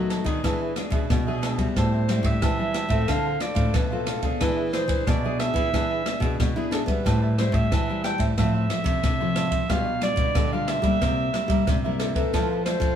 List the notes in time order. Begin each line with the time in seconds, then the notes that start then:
Already playing: D#3 F#3 A3 B3 F#4 B4
0.09 D#4 A4 B4 D#5, cross-stick, ride
0.24 D#3 B3 D4 G#4 A4 B4 D#5, kick, ride
0.44 E3 D4 G#4 B4 E5, kick, cross-stick, ride
0.61 G#4 B4 E5
0.76 B3 D4 G#4, muted cavaquinho stroke, cross-stick, ride
0.90 B2 G#4 B4 E5, kick, ride
1.10 B2, kick, cross-stick, ride
1.27 B3 D4 G#4 B4 E5
1.42 D4 G#4 B4 E5, cross-stick, ride
1.57 G3 C4 E4 G#4 B4 E5, kick, ride
1.76 A2 G4 C5 E5 A5, kick, cross-stick, ride
1.93 C5 E5 A5
2.08 G3 C4 E4, muted cavaquinho stroke, cross-stick, ride
2.23 A2 E5, kick, ride
2.42 E3 G4 C5 E5 A5, kick, cross-stick, ride
2.59 G3 C4 E4 C5 E5 A5
2.73 G4 C5 E5 A5, cross-stick, ride
2.89 A2 C4 F4 A4 C5 E5 A5, kick, ride
3.08 D3 D4 A4 C5 F5, kick, cross-stick, ride
3.25 A4 C5 F5
3.40 C4 F4 A4 D5, muted cavaquinho stroke, cross-stick, ride
3.55 A2 A4 C5 F5, kick, ride
3.74 A2 B2 B4, kick, cross-stick, ride
3.91 C4 F4 A4 C5 F5
4.06 D4 A4 C5 F5, cross-stick, ride
4.22 B3 D4 G#4 A4 C5 F5, kick, ride
4.40 E3 D4 G#4 B4 E5, kick, cross-stick, ride
4.57 G#4 B4 E5
4.73 D4 G#4 C5, muted cavaquinho stroke, cross-stick, ride
4.88 E3, kick, ride
5.07 B2 D4 G#4 B4 D5 E5, kick, cross-stick, ride
5.24 B3 D4 G#4 B4 E5
5.40 D4 G#4 B4 E5, cross-stick, ride
5.54 E3 B3 D4 G#4 B4 E5, kick, ride
5.73 E3 B3 D4 G#4 B4 E5, kick, cross-stick, ride
5.90 G#4 B4 E5
6.06 B3 D4 G#4, cross-stick, ride
6.20 B2 G#4 B4 E5, kick, ride
6.40 B2, kick, cross-stick, ride
6.56 B3 D4 E4 G#4 B4 E5
6.71 D4 G#4 A4 B4 E5, cross-stick, ride
6.86 G3 B3 C4 E4 G#4 B4 E5, kick, ride
7.05 A2 G4 C5 E5 A5, kick, cross-stick, ride
7.22 C5 E5 A5
7.38 G3 C4 E4 C5, muted cavaquinho stroke, cross-stick, ride
7.52 A2 E5, kick, ride
7.71 E3 G4 C5 E5 A5, kick, cross-stick, ride
7.88 G3 C4 E4 C5 E5 A5
8.04 G4 C5 E5 G5 A5, cross-stick, ride
8.18 A2 C5 E5 A5, kick, ride
8.37 A2 F3 C4 E4 F4 A4 C5 E5, kick, cross-stick, ride
8.54 A4 C5 E5
8.69 F3 C4 E4, muted cavaquinho stroke, cross-stick, ride
8.84 C3 A4 C5 E5, kick, ride
9.03 A2 C3, kick, cross-stick, ride
9.20 F3 C4 E4 A4 C5 E5
9.35 F4 A4 C5 E5, cross-stick, ride
9.51 A4 C5 E5, kick, ride
9.68 B2 G3 D4 F4 G4 B4 D5 F5, kick, cross-stick, ride
9.86 G4 B4 D5
10.01 G3 D4 F4 D5, muted cavaquinho stroke, cross-stick, ride
10.16 B2, kick, ride
10.35 B2 D3 F4 G4 B4 D5, kick, cross-stick, ride
10.52 G3 D4 F4 G4 B4 D5 F5
10.67 F4 G4 B4 D5 E5, cross-stick, ride
10.82 G3 A#3 E4 G4 B4 D5, kick, ride
11.01 C3 E4 A#4 C5 E5, kick, cross-stick, ride
11.20 A#4 C5 E5
11.34 G3 A#3 E4, muted cavaquinho stroke, cross-stick, ride
11.48 G3 A#4 C5 E5, kick, ride
11.67 G2 C3, kick, cross-stick, ride
11.84 G3 A#3 E4 A#4 C5 E5
11.99 E4 A4 A#4 C5 E5, cross-stick, ride
12.15 C4 E4 A4 A#4 B4 C5 E5, kick, ride
12.33 F3 E4 A4 C5 F5, kick, cross-stick, ride
12.50 A4 C5 F5
12.65 C4 E4 A4 C5, muted cavaquinho stroke, cross-stick, ride
12.80 F3, kick, ride